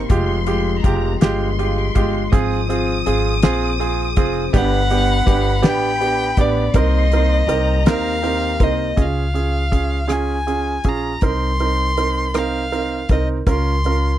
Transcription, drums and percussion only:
0, 0, Header, 1, 2, 480
1, 0, Start_track
1, 0, Tempo, 738007
1, 67, Time_signature, 6, 3, 24, 8
1, 4867, Tempo, 747198
1, 9172, End_track
2, 0, Start_track
2, 0, Title_t, "Drums"
2, 63, Note_on_c, 9, 42, 81
2, 65, Note_on_c, 9, 36, 107
2, 128, Note_off_c, 9, 42, 0
2, 130, Note_off_c, 9, 36, 0
2, 303, Note_on_c, 9, 42, 60
2, 368, Note_off_c, 9, 42, 0
2, 547, Note_on_c, 9, 36, 86
2, 547, Note_on_c, 9, 42, 64
2, 612, Note_off_c, 9, 36, 0
2, 612, Note_off_c, 9, 42, 0
2, 788, Note_on_c, 9, 42, 85
2, 795, Note_on_c, 9, 38, 112
2, 853, Note_off_c, 9, 42, 0
2, 860, Note_off_c, 9, 38, 0
2, 1036, Note_on_c, 9, 42, 49
2, 1101, Note_off_c, 9, 42, 0
2, 1270, Note_on_c, 9, 42, 67
2, 1273, Note_on_c, 9, 36, 88
2, 1335, Note_off_c, 9, 42, 0
2, 1338, Note_off_c, 9, 36, 0
2, 1513, Note_on_c, 9, 36, 110
2, 1513, Note_on_c, 9, 42, 82
2, 1578, Note_off_c, 9, 42, 0
2, 1579, Note_off_c, 9, 36, 0
2, 1756, Note_on_c, 9, 42, 62
2, 1821, Note_off_c, 9, 42, 0
2, 1992, Note_on_c, 9, 42, 73
2, 2057, Note_off_c, 9, 42, 0
2, 2227, Note_on_c, 9, 42, 86
2, 2233, Note_on_c, 9, 38, 110
2, 2292, Note_off_c, 9, 42, 0
2, 2298, Note_off_c, 9, 38, 0
2, 2477, Note_on_c, 9, 42, 50
2, 2542, Note_off_c, 9, 42, 0
2, 2707, Note_on_c, 9, 42, 67
2, 2713, Note_on_c, 9, 36, 90
2, 2772, Note_off_c, 9, 42, 0
2, 2778, Note_off_c, 9, 36, 0
2, 2950, Note_on_c, 9, 42, 83
2, 2951, Note_on_c, 9, 36, 112
2, 3015, Note_off_c, 9, 42, 0
2, 3016, Note_off_c, 9, 36, 0
2, 3190, Note_on_c, 9, 42, 56
2, 3255, Note_off_c, 9, 42, 0
2, 3427, Note_on_c, 9, 36, 95
2, 3431, Note_on_c, 9, 42, 67
2, 3492, Note_off_c, 9, 36, 0
2, 3496, Note_off_c, 9, 42, 0
2, 3662, Note_on_c, 9, 42, 90
2, 3669, Note_on_c, 9, 38, 110
2, 3727, Note_off_c, 9, 42, 0
2, 3734, Note_off_c, 9, 38, 0
2, 3910, Note_on_c, 9, 42, 51
2, 3975, Note_off_c, 9, 42, 0
2, 4142, Note_on_c, 9, 42, 70
2, 4146, Note_on_c, 9, 36, 90
2, 4207, Note_off_c, 9, 42, 0
2, 4211, Note_off_c, 9, 36, 0
2, 4383, Note_on_c, 9, 42, 91
2, 4386, Note_on_c, 9, 36, 116
2, 4448, Note_off_c, 9, 42, 0
2, 4451, Note_off_c, 9, 36, 0
2, 4628, Note_on_c, 9, 42, 58
2, 4693, Note_off_c, 9, 42, 0
2, 4869, Note_on_c, 9, 42, 69
2, 4933, Note_off_c, 9, 42, 0
2, 5109, Note_on_c, 9, 42, 89
2, 5116, Note_on_c, 9, 38, 102
2, 5173, Note_off_c, 9, 42, 0
2, 5180, Note_off_c, 9, 38, 0
2, 5352, Note_on_c, 9, 42, 50
2, 5416, Note_off_c, 9, 42, 0
2, 5585, Note_on_c, 9, 42, 66
2, 5586, Note_on_c, 9, 36, 86
2, 5649, Note_off_c, 9, 42, 0
2, 5650, Note_off_c, 9, 36, 0
2, 5824, Note_on_c, 9, 42, 69
2, 5825, Note_on_c, 9, 36, 89
2, 5889, Note_off_c, 9, 36, 0
2, 5889, Note_off_c, 9, 42, 0
2, 6069, Note_on_c, 9, 42, 50
2, 6133, Note_off_c, 9, 42, 0
2, 6305, Note_on_c, 9, 36, 72
2, 6309, Note_on_c, 9, 42, 55
2, 6370, Note_off_c, 9, 36, 0
2, 6373, Note_off_c, 9, 42, 0
2, 6542, Note_on_c, 9, 42, 76
2, 6549, Note_on_c, 9, 37, 84
2, 6607, Note_off_c, 9, 42, 0
2, 6613, Note_off_c, 9, 37, 0
2, 6790, Note_on_c, 9, 42, 43
2, 6854, Note_off_c, 9, 42, 0
2, 7021, Note_on_c, 9, 42, 56
2, 7028, Note_on_c, 9, 36, 75
2, 7086, Note_off_c, 9, 42, 0
2, 7092, Note_off_c, 9, 36, 0
2, 7261, Note_on_c, 9, 42, 70
2, 7268, Note_on_c, 9, 36, 97
2, 7326, Note_off_c, 9, 42, 0
2, 7333, Note_off_c, 9, 36, 0
2, 7508, Note_on_c, 9, 42, 49
2, 7573, Note_off_c, 9, 42, 0
2, 7751, Note_on_c, 9, 42, 58
2, 7815, Note_off_c, 9, 42, 0
2, 7988, Note_on_c, 9, 42, 76
2, 7995, Note_on_c, 9, 37, 88
2, 8053, Note_off_c, 9, 42, 0
2, 8059, Note_off_c, 9, 37, 0
2, 8238, Note_on_c, 9, 42, 43
2, 8302, Note_off_c, 9, 42, 0
2, 8468, Note_on_c, 9, 42, 59
2, 8472, Note_on_c, 9, 36, 82
2, 8532, Note_off_c, 9, 42, 0
2, 8536, Note_off_c, 9, 36, 0
2, 8710, Note_on_c, 9, 42, 75
2, 8711, Note_on_c, 9, 36, 101
2, 8774, Note_off_c, 9, 42, 0
2, 8776, Note_off_c, 9, 36, 0
2, 8950, Note_on_c, 9, 42, 52
2, 9015, Note_off_c, 9, 42, 0
2, 9172, End_track
0, 0, End_of_file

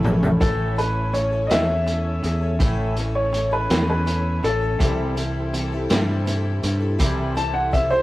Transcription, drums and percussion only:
0, 0, Header, 1, 2, 480
1, 0, Start_track
1, 0, Tempo, 732601
1, 267, Time_signature, 6, 3, 24, 8
1, 5257, End_track
2, 0, Start_track
2, 0, Title_t, "Drums"
2, 29, Note_on_c, 9, 45, 103
2, 39, Note_on_c, 9, 82, 31
2, 95, Note_off_c, 9, 45, 0
2, 104, Note_off_c, 9, 82, 0
2, 150, Note_on_c, 9, 43, 87
2, 153, Note_on_c, 9, 82, 30
2, 215, Note_off_c, 9, 43, 0
2, 219, Note_off_c, 9, 82, 0
2, 270, Note_on_c, 9, 36, 109
2, 270, Note_on_c, 9, 42, 83
2, 335, Note_off_c, 9, 36, 0
2, 336, Note_off_c, 9, 42, 0
2, 514, Note_on_c, 9, 42, 60
2, 580, Note_off_c, 9, 42, 0
2, 749, Note_on_c, 9, 42, 58
2, 815, Note_off_c, 9, 42, 0
2, 987, Note_on_c, 9, 42, 87
2, 992, Note_on_c, 9, 38, 105
2, 1052, Note_off_c, 9, 42, 0
2, 1057, Note_off_c, 9, 38, 0
2, 1228, Note_on_c, 9, 42, 68
2, 1294, Note_off_c, 9, 42, 0
2, 1466, Note_on_c, 9, 42, 64
2, 1531, Note_off_c, 9, 42, 0
2, 1703, Note_on_c, 9, 42, 87
2, 1705, Note_on_c, 9, 36, 105
2, 1769, Note_off_c, 9, 42, 0
2, 1771, Note_off_c, 9, 36, 0
2, 1944, Note_on_c, 9, 42, 65
2, 2009, Note_off_c, 9, 42, 0
2, 2188, Note_on_c, 9, 42, 67
2, 2254, Note_off_c, 9, 42, 0
2, 2426, Note_on_c, 9, 42, 93
2, 2431, Note_on_c, 9, 38, 108
2, 2492, Note_off_c, 9, 42, 0
2, 2497, Note_off_c, 9, 38, 0
2, 2668, Note_on_c, 9, 42, 69
2, 2733, Note_off_c, 9, 42, 0
2, 2911, Note_on_c, 9, 42, 71
2, 2977, Note_off_c, 9, 42, 0
2, 3147, Note_on_c, 9, 36, 106
2, 3148, Note_on_c, 9, 42, 95
2, 3212, Note_off_c, 9, 36, 0
2, 3213, Note_off_c, 9, 42, 0
2, 3389, Note_on_c, 9, 42, 67
2, 3454, Note_off_c, 9, 42, 0
2, 3630, Note_on_c, 9, 42, 67
2, 3696, Note_off_c, 9, 42, 0
2, 3866, Note_on_c, 9, 42, 95
2, 3871, Note_on_c, 9, 38, 107
2, 3932, Note_off_c, 9, 42, 0
2, 3937, Note_off_c, 9, 38, 0
2, 4110, Note_on_c, 9, 42, 69
2, 4175, Note_off_c, 9, 42, 0
2, 4347, Note_on_c, 9, 42, 67
2, 4412, Note_off_c, 9, 42, 0
2, 4584, Note_on_c, 9, 42, 89
2, 4586, Note_on_c, 9, 36, 101
2, 4649, Note_off_c, 9, 42, 0
2, 4651, Note_off_c, 9, 36, 0
2, 4829, Note_on_c, 9, 42, 61
2, 4894, Note_off_c, 9, 42, 0
2, 5068, Note_on_c, 9, 36, 74
2, 5072, Note_on_c, 9, 42, 59
2, 5133, Note_off_c, 9, 36, 0
2, 5137, Note_off_c, 9, 42, 0
2, 5257, End_track
0, 0, End_of_file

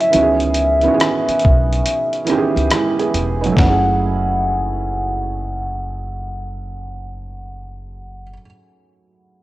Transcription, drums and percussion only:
0, 0, Header, 1, 2, 480
1, 0, Start_track
1, 0, Tempo, 857143
1, 77, Time_signature, 4, 2, 24, 8
1, 5280, End_track
2, 0, Start_track
2, 0, Title_t, "Drums"
2, 3, Note_on_c, 9, 42, 49
2, 59, Note_off_c, 9, 42, 0
2, 72, Note_on_c, 9, 42, 72
2, 128, Note_off_c, 9, 42, 0
2, 224, Note_on_c, 9, 42, 49
2, 280, Note_off_c, 9, 42, 0
2, 304, Note_on_c, 9, 42, 63
2, 360, Note_off_c, 9, 42, 0
2, 456, Note_on_c, 9, 42, 38
2, 512, Note_off_c, 9, 42, 0
2, 561, Note_on_c, 9, 42, 73
2, 566, Note_on_c, 9, 37, 108
2, 617, Note_off_c, 9, 42, 0
2, 622, Note_off_c, 9, 37, 0
2, 720, Note_on_c, 9, 42, 44
2, 776, Note_off_c, 9, 42, 0
2, 781, Note_on_c, 9, 42, 55
2, 811, Note_on_c, 9, 36, 81
2, 837, Note_off_c, 9, 42, 0
2, 867, Note_off_c, 9, 36, 0
2, 967, Note_on_c, 9, 42, 45
2, 1023, Note_off_c, 9, 42, 0
2, 1040, Note_on_c, 9, 42, 80
2, 1096, Note_off_c, 9, 42, 0
2, 1192, Note_on_c, 9, 42, 39
2, 1248, Note_off_c, 9, 42, 0
2, 1270, Note_on_c, 9, 42, 50
2, 1287, Note_on_c, 9, 37, 31
2, 1326, Note_off_c, 9, 42, 0
2, 1343, Note_off_c, 9, 37, 0
2, 1440, Note_on_c, 9, 42, 36
2, 1496, Note_off_c, 9, 42, 0
2, 1515, Note_on_c, 9, 42, 69
2, 1520, Note_on_c, 9, 37, 98
2, 1571, Note_off_c, 9, 42, 0
2, 1576, Note_off_c, 9, 37, 0
2, 1677, Note_on_c, 9, 42, 40
2, 1733, Note_off_c, 9, 42, 0
2, 1760, Note_on_c, 9, 42, 58
2, 1816, Note_off_c, 9, 42, 0
2, 1926, Note_on_c, 9, 42, 47
2, 1982, Note_off_c, 9, 42, 0
2, 1997, Note_on_c, 9, 36, 88
2, 2007, Note_on_c, 9, 38, 88
2, 2053, Note_off_c, 9, 36, 0
2, 2063, Note_off_c, 9, 38, 0
2, 5280, End_track
0, 0, End_of_file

